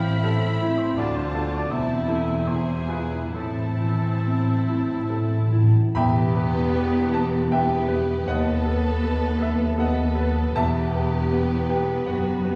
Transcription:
Already playing: double bass section A1, cello section A2, grand piano A2 E3 C4 E4, viola section C4, violin section E4 B5, oboe F5
0.24 viola section C4, grand piano A4, oboe E5
0.61 grand piano E4
0.78 oboe C5
0.97 cello section D2, grand piano D2, double bass section D2, viola section D4, violin section F4 A5, oboe D5
1.16 oboe C5
1.35 grand piano F4 A4
1.54 oboe D5
1.69 double bass section E1, cello section E2, grand piano E2, viola section C4, violin section E4 A5, oboe E5
2.08 grand piano E4 A4, violin section G#5
2.47 grand piano E2, viola section E4, violin section G#4, oboe C5
2.89 grand piano F4 G#4, oboe B4
3.33 double bass section A1, cello section A2, grand piano A2, viola section C4, violin section E4 A5, oboe A4
3.81 grand piano E3
4.14 timpani A2
4.26 grand piano C4
4.69 timpani A2, grand piano E4
4.96 timpani A2
5.04 timpani A2
5.10 timpani A2, grand piano A4
5.21 timpani A2
5.30 timpani A2
5.38 timpani A2
5.47 timpani A2
5.52 timpani A2, grand piano E4
5.63 timpani A2
5.72 timpani A2
5.79 timpani A2
5.94 double bass section E1, timpani E2, cello section E2, grand piano E2 E5 G5 B5, viola section B3, violin section G4 B4
6.35 grand piano G4 B4
6.76 grand piano B3 G4 B4
7.14 grand piano G4 B4 A5
7.51 grand piano B3 G4 B4 E5 G5, viola section B3, violin section G4 B4
7.88 grand piano G4 B4
8.26 grand piano D#2 B4 D#5 F#5, cello section D#2, double bass section D#2, viola section B3, violin section A4 B4
8.65 grand piano A4 B4
9.02 grand piano B3 A4 B4
9.40 grand piano A4 B4 E5
9.78 grand piano B3 A4 B4 D#5 F#5, viola section B3, violin section A4 B4
10.15 grand piano A4 B4
10.55 double bass section E1, grand piano E2 E5 A5, cello section E2, viola section B3, violin section G4 B4
10.94 grand piano G4 B4
11.30 grand piano B3 G4 B4
11.69 grand piano G4 B4 G5
12.06 double bass section F#1, cello section F#2, grand piano B3 G4 B4 F#5, violin section F#4
12.44 grand piano G4 B4

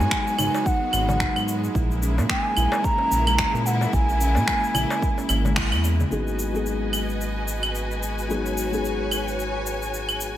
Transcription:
Already playing: string section D#3 F#3 G#3 B3 F#4, bansuri G#5
0.01 shaker
0.11 steel tongue drum F#3, finger snap, kick, shaker
0.27 shaker
0.38 analog synth bass G#1, steel tongue drum D#4, darbuka dum, claves, shaker
0.55 darbuka tek, shaker
0.66 bansuri F#5, kick, shaker
0.82 steel tongue drum B3
0.93 analog synth bass G#1, steel tongue drum G#3, darbuka tek, claves, shaker
1.09 steel tongue drum F#3, darbuka ka, darbuka dum, shaker
1.20 steel tongue drum D#4, finger snap, kick, shaker
1.36 analog synth bass G#2, darbuka tek, claves, shaker
1.48 shaker
1.64 shaker
1.75 analog synth bass A#1, string section C#3 E3 A#3 E4, steel tongue drum E4, kick, shaker
1.91 shaker
2.03 steel tongue drum C#4, shaker
2.18 analog synth bass A#2, steel tongue drum A#3, darbuka ka, shaker
2.30 steel tongue drum G#3, bansuri G#5, finger snap, kick, shaker
2.57 analog synth bass A#1, steel tongue drum E4, claves, shaker
2.72 darbuka tek, shaker
2.84 bansuri A#5, kick, shaker
2.98 steel tongue drum C#4, darbuka ka, darbuka tek
3.11 analog synth bass A#1, steel tongue drum A#3, shaker
3.27 steel tongue drum G#3, claves, shaker
3.38 steel tongue drum E4, finger snap, kick, shaker
3.54 analog synth bass A#2, shaker
3.66 bansuri F#5, shaker
3.81 darbuka ka, shaker
3.93 analog synth bass A#1, steel tongue drum E4, bansuri G#5, kick, shaker
4.09 shaker
4.21 steel tongue drum C#4, shaker
4.35 analog synth bass A#2, steel tongue drum A#3, darbuka ka, shaker
4.47 steel tongue drum G#3, finger snap, kick, shaker
4.64 shaker
4.74 analog synth bass A#1, steel tongue drum E4, darbuka dum, claves, shaker
4.90 darbuka tek, shaker
5.02 kick, shaker
5.18 steel tongue drum C#4, darbuka tek, shaker
5.29 analog synth bass G#1, steel tongue drum A#3, darbuka tek, claves, shaker
5.45 steel tongue drum G#3, darbuka ka, darbuka dum, shaker
5.56 steel tongue drum E4, finger snap, kick, shaker
5.72 analog synth bass E2, darbuka tek, claves, shaker
5.84 darbuka tek, shaker
6.00 darbuka dum, shaker
6.10 analog synth bass G#1, felt piano F#3 G#3 B3 D#4 G#4, string section F#4 B4 D#5 G#5, shaker
6.27 shaker
6.39 shaker
6.52 felt piano F#3 G#3 B3 D#4, shaker
6.56 felt piano G#4
6.66 shaker
6.93 claves, shaker
7.09 shaker
7.21 shaker
7.48 shaker
7.63 claves, shaker
7.75 shaker
7.91 shaker
8.03 shaker
8.19 shaker
8.28 felt piano F#3 G#3 B3 D#4 G#4, string section C#5, shaker
8.46 shaker
8.58 shaker
8.70 felt piano F#3 G#3 B3 D#4, shaker
8.74 felt piano G#4
8.85 shaker
9.11 claves, shaker
9.28 shaker
9.39 shaker
9.66 shaker
9.82 shaker
9.94 shaker
10.09 claves, shaker
10.21 shaker

